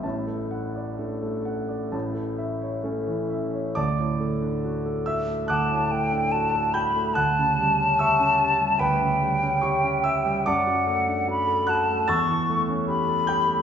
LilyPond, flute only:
\new Staff \with { instrumentName = "Flute" } { \time 4/4 \key d \major \tempo 4 = 72 r1 | r2 a''8 g''8 a''8 b''8 | a''2 g''2 | fis''4 b''8 a''8 cis'''8 r8 b''4 | }